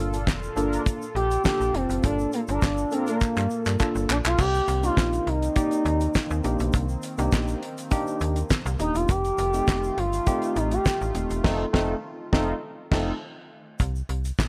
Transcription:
Already playing: G1 A#2 A#3 D4 F4 A4
0.13 D4 F4 A4, closed hi-hat, shaker
0.27 F1, kick, snare, clap, shaker
0.43 shaker
0.56 G1 A#3 D4 F4 A4 A#4, closed hi-hat, shaker
0.73 closed hi-hat, shaker
0.86 kick, closed hi-hat, shaker
1.02 shaker
1.15 A#1 G4, closed hi-hat
1.31 closed hi-hat, shaker
1.44 A#3 D4 F4 G4 A4, kick, snare, clap, shaker
1.60 A#1, closed hi-hat, shaker
1.74 F1 C4, closed hi-hat
1.89 F#1, closed hi-hat, shaker
2.03 G1 A#3 D4 F4 A4, kick, closed hi-hat, shaker
2.19 shaker
2.32 A#3, closed hi-hat, shaker
2.48 G1 D4 F4 A#4, closed hi-hat, shaker
2.62 G1, kick, snare, clap, shaker
2.77 shaker
2.91 A#3 C4 D4 F4 A4 A#4, closed hi-hat, shaker
3.07 A#3, closed hi-hat, shaker
3.21 kick, clap, shaker
3.37 G2, clap, shaker
3.50 shaker
3.66 G2, clap, shaker
3.80 A#3 D4 F4 A4, kick, clap, shaker
3.95 G1, shaker
4.09 A#1 D4, clap, shaker
4.25 B1 F4, clap, shaker
4.38 C2 D#3 A#3 C4 G4, kick, crash, shaker
4.54 closed hi-hat, shaker
4.68 C2, closed hi-hat, shaker
4.83 A#3 D4 D#4 F4 G4, closed hi-hat, shaker
4.97 A#1, kick, snare, clap, shaker
5.13 closed hi-hat, shaker
5.27 C2 D#4, closed hi-hat
5.42 closed hi-hat, shaker
5.56 A#3 D#4 G4 D5, kick, closed hi-hat, shaker
5.71 closed hi-hat, shaker
5.85 D#2, closed hi-hat, shaker
6.01 closed hi-hat, shaker
6.15 kick, snare, clap, shaker
6.31 D#2, shaker
6.44 A#1 A#3 D4 D#4 G4, closed hi-hat, shaker
6.59 B1, closed hi-hat, shaker
6.73 C2, kick, closed hi-hat, shaker
6.89 shaker
7.02 closed hi-hat, shaker
7.18 C2 A#3 D4 D#4 G4, closed hi-hat, shaker
7.32 A#1, kick, snare, clap, shaker
7.48 closed hi-hat, shaker
7.63 closed hi-hat
7.78 closed hi-hat, shaker
7.91 A#3 D4 D#4 G4, kick, closed hi-hat, shaker
8.07 shaker
8.20 D#2, closed hi-hat, shaker
8.36 closed hi-hat, shaker
8.50 kick, snare, clap, shaker
8.66 C2, closed hi-hat, shaker
8.79 D#1 A#3 D4 D#4 G4, closed hi-hat, shaker
8.95 E1 F4, closed hi-hat, shaker
9.09 F1 D#3 A3 F4 G4, kick, closed hi-hat, shaker
9.25 closed hi-hat, shaker
9.38 F1, closed hi-hat, shaker
9.54 A3 C4 D#4 G4, closed hi-hat, shaker
9.68 F1, kick, snare, clap, shaker
9.83 shaker
9.98 G1 F4, closed hi-hat
10.13 closed hi-hat, shaker
10.27 A3 C4 D#4 G4, kick, closed hi-hat, shaker
10.42 closed hi-hat, shaker
10.56 A1 D#4, closed hi-hat, shaker
10.71 G4, closed hi-hat, shaker
10.86 kick, snare, clap, shaker
11.01 A1, shaker
11.15 D#1 A3 C4 D#4 G4, closed hi-hat, shaker
11.30 E1, closed hi-hat, shaker
11.44 F1 A3 C4 D#4 F4 A4, kick, snare, crash
11.73 F1 A3 C4 D#4 F4 A4, kick, snare
12.32 F1 A3 C4 D#4 F4 A4, kick, snare
12.91 F1 A3 C4 D#4 F4 A4, kick, snare, crash
13.80 C2, kick, closed hi-hat, shaker
13.96 shaker
14.09 C2, closed hi-hat
14.25 closed hi-hat, shaker
14.39 A#1, kick, snare, clap, shaker

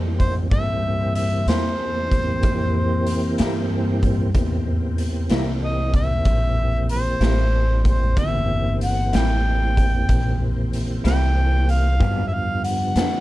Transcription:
Already playing: F2 E3 A#3 C4 G4
0.20 C5, kick, closed hi-hat
0.51 G2 E3 A#3 C4 G4 E5, kick, closed hi-hat
1.15 E5, closed hi-hat
1.46 E2 C3 G3 A#3 E4 C5, snare, closed hi-hat
2.12 kick, closed hi-hat
2.43 F2, kick, closed hi-hat
3.07 closed hi-hat
3.38 G2 C3 G3 A#3 E4, snare, closed hi-hat
4.03 kick, closed hi-hat
4.34 E2 E3 A#3 C4 G4, kick, closed hi-hat
4.98 closed hi-hat
5.30 C2 C3 G3 A#3 E4, snare, closed hi-hat
5.64 D#5
5.93 E5, kick, closed hi-hat
6.25 A#1, kick, closed hi-hat
6.89 C5, closed hi-hat
7.20 A1 C3 G3 A#3 E4, snare, closed hi-hat
7.85 C5, kick, closed hi-hat
8.16 G1 E3 A#3 C4 G4 E5, kick, closed hi-hat
8.81 F#5, closed hi-hat
9.13 A1 C3 G3 A#3 E4 G5, snare, closed hi-hat
9.77 kick, closed hi-hat
10.09 A#1, kick, closed hi-hat
10.73 closed hi-hat
11.04 C2 C3 G3 A#3 E4 G5, snare, closed hi-hat
11.69 F5, closed hi-hat
12.00 G2 F3 F#3 B3 C4 D4 D#4 G#4, kick, closed hi-hat
12.27 E5
12.34 D3 F3 B3 G4 F5
12.64 F#5, closed hi-hat
12.95 F2 G2 F3 B3 D4, snare, closed hi-hat

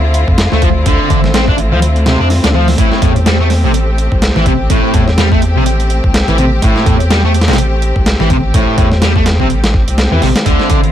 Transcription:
Already playing: D2 D3 A3 C4 E4 F4
0.14 closed hi-hat
0.28 F2, kick
0.38 snare, closed hi-hat
0.52 D2 A3, snare
0.62 F3, kick, closed hi-hat
0.86 D2 D3, kick, closed hi-hat
1.10 A1 D3, kick, closed hi-hat
1.24 snare
1.34 C4, snare, closed hi-hat
1.48 D4, kick
1.58 closed hi-hat
1.72 D2 F3
1.82 closed hi-hat
1.96 closed hi-hat
2.06 C3, snare, closed hi-hat
2.20 F2 D4
2.30 snare, open hi-hat
2.44 D2 D4, snare, closed hi-hat
2.54 F3
2.68 snare, open hi-hat
2.78 A1 A2 G4, kick, closed hi-hat
2.92 snare
3.02 E2 A2, kick, closed hi-hat
3.16 closed hi-hat
3.26 G3, snare, closed hi-hat
3.40 A3
3.50 snare, open hi-hat
3.64 A1 C3
3.74 closed hi-hat
3.98 closed hi-hat
4.12 C2, kick
4.22 snare, closed hi-hat
4.36 A1 E3, snare
4.46 C3, kick, closed hi-hat
4.70 A1 A2, kick, closed hi-hat
4.94 E2 A2, kick, closed hi-hat
5.08 snare
5.18 G3, snare, closed hi-hat
5.32 A3, kick
5.42 closed hi-hat
5.56 A1 C3
5.66 closed hi-hat
5.80 closed hi-hat
5.90 closed hi-hat
6.04 C2, kick
6.14 snare, closed hi-hat
6.28 A1 E3, closed hi-hat
6.38 C3, closed hi-hat
6.62 A1 A2, kick, closed hi-hat
6.76 snare
6.86 E2 A2, kick, closed hi-hat
7.00 closed hi-hat
7.10 G3, snare, closed hi-hat
7.24 A3
7.34 closed hi-hat
7.41 snare, closed hi-hat
7.48 A1 C3, snare, closed hi-hat
7.53 snare, closed hi-hat
7.58 closed hi-hat
7.82 closed hi-hat
7.96 C2, kick
8.06 snare, closed hi-hat
8.20 A1 E3, snare
8.30 C3, kick, closed hi-hat
8.54 A1 A2, kick, closed hi-hat
8.78 E2 A2, kick, closed hi-hat
8.92 snare
9.02 G3, snare, closed hi-hat
9.16 A3, kick
9.26 snare, closed hi-hat
9.40 A1 C3, kick
9.50 closed hi-hat
9.64 snare, closed hi-hat
9.74 kick
9.88 C2, closed hi-hat
9.98 snare, closed hi-hat
10.12 E2 E3
10.22 A1 C3, snare, open hi-hat
10.36 snare, closed hi-hat
10.46 D2 D3 A3 C4 E4 F4, kick, closed hi-hat
10.60 snare
10.70 A1 D3, kick, closed hi-hat
10.84 closed hi-hat

